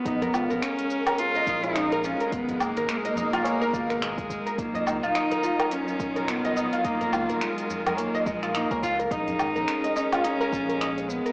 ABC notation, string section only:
X:1
M:4/4
L:1/8
Q:"Swing 16ths" 1/4=106
K:Ebm
V:1 name="String section"
[A,DB]8 | [C,EB]8 | [E,G,FB]8- | [E,G,FB]8 |
[A,D]8 |]